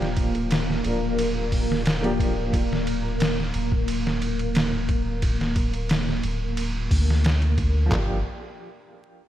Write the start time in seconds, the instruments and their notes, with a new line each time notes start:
Already playing: sub bass D1, upright piano F3 A#3 D4 G4 A#4, string machine A#3 A#4
0.02 snare
0.17 kick, ride
0.35 ride
0.51 snare, ride
0.70 snare
0.83 sub bass D1, upright piano F3 A#3 D4 A#4, ride
1.19 ride
1.52 kick, open hi-hat
1.72 snare
1.86 snare, ride
2.01 upright piano F3 A#3 D4 G4, ride
2.20 kick, ride
2.53 kick, ride
2.73 snare
2.87 ride
3.20 snare, ride
3.40 snare
3.54 sub bass D1, ride
3.72 kick
3.88 ride
4.07 snare
4.22 ride
4.39 ride
4.55 snare, ride
4.89 kick, ride
5.22 kick, ride
5.41 snare
5.56 kick, ride
5.74 ride
5.89 snare, ride
6.09 snare
6.23 sub bass D1, ride
6.57 ride
6.91 sub bass D2, kick, open hi-hat
7.10 snare
7.24 snare, ride
7.42 ride
7.58 kick, ride
7.86 upright piano F3
7.90 sub bass G1, upright piano A#3 D4, kick, clap, floor tom
7.98 upright piano G4